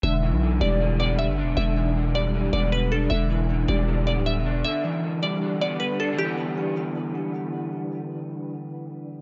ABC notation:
X:1
M:4/4
L:1/16
Q:1/4=156
K:Em
V:1 name="Synth pluck"
e6 d4 d2 e4 | e6 d4 d2 B2 A2 | e6 d4 d2 e4 | e6 d4 d2 B2 A2 |
G12 z4 | z16 |]
V:2 name="Clean electric guitar" clef=bass
D,2 E,2 D,2 G,2 D,2 B,4 D2 | D,2 E,2 D,2 G,2 D,2 B,4 D2 | D,2 E,2 D,2 G,2 D,2 B,4 D2 | D,2 E,2 D,2 G,2 D,2 B,4 D2 |
[D,E,G,B,]16- | [D,E,G,B,]16 |]
V:3 name="808-style bass" clef=bass
E,,,3 B,,,3 E,,,6- E,,, G,,,3/2 E,,,3/2 | E,,,8- E,,,2 E,,,6 | E,,,6 E,,,4- E,,, D,,,2- D,,,/2 E,,,2- E,,,/2 | z16 |
z16 | z16 |]